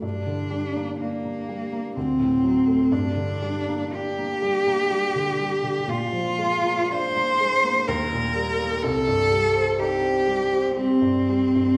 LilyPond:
<<
  \new Staff \with { instrumentName = "Cello" } { \time 3/4 \key g \minor \tempo 4 = 62 d'4 bes4 c'4 | d'4 g'2 | f'4 c''4 bes'4 | a'4 g'4 c'4 | }
  \new Staff \with { instrumentName = "Grand piano" } { \clef bass \time 3/4 \key g \minor g,16 d16 g16 bes16 d'16 bes16 g16 bes16 d,16 a,16 fis16 a16 | g,16 d16 g16 bes16 d'16 bes16 g16 bes16 g16 d16 g16 d16 | bes,16 f16 aes16 bes16 d'16 bes16 aes16 bes16 ees,16 bes,16 g16 bes16 | c,16 g,16 g16 c'16 ees'16 c'16 g16 c'16 g16 g,16 g16 g,16 | }
>>